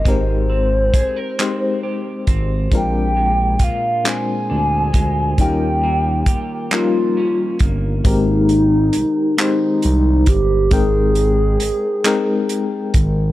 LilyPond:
<<
  \new Staff \with { instrumentName = "Soft synth lead" } { \time 6/8 \key aes \major \tempo 4. = 45 c''2~ c''8 r8 | g''4 f''8 aes''4. | g''4. f'4 r8 | ees'4. ees'4 g'8 |
aes'2~ aes'8 r8 | }
  \new Staff \with { instrumentName = "FM electric piano" } { \time 6/8 \key aes \major <aes c' ees' g' bes'>4 r8 <aes c' ees' g' c''>4 r8 | <aes c' d' f' bes'>4 r8 <aes c' d' f' c''>4 r8 | <g des' ees' f' bes'>4 r8 <g des' ees' f' bes'>4 r8 | <aes c' ees' g' bes'>4 r8 <aes c' ees' g' c''>4 r8 |
<aes c' ees' bes' g''>4 r8 <aes c' ees' bes' g''>4 r8 | }
  \new Staff \with { instrumentName = "Clean electric guitar" } { \time 6/8 \key aes \major <aes c' g' bes'>8 c'8 aes'16 bes'16 c'8 g'8 c'8 | bes,8 aes8 f'8 aes8 d'8 aes8 | ees8 bes8 g'8 bes8 des'8 bes8 | r2. |
r2. | }
  \new Staff \with { instrumentName = "Analog synth bass" } { \clef bass \time 6/8 \key aes \major aes,,4 aes,,8 r4 aes,,8 | bes,,4 d,8 r8 d,8 d,8 | ees,4 g,,8 r4 g,,8 | aes,,4 c,8 r8 c,8 g,,8 |
aes,,4 aes,,8 r4 aes,,8 | }
  \new DrumStaff \with { instrumentName = "Drums" } \drummode { \time 6/8 <hh bd>4 <hh bd>8 <hc hh>4 <hh bd>8 | <hh bd>4 <hh bd>8 <hc hh>4 <hh bd>8 | <hh bd>4 <hh bd>8 <hc hh>4 <hh bd>8 | <hh bd>8 hh8 hh8 <hc hh>8 hh8 <hh bd>8 |
<hh bd>8 hh8 hh8 <hc hh>8 hh8 <hh bd>8 | }
>>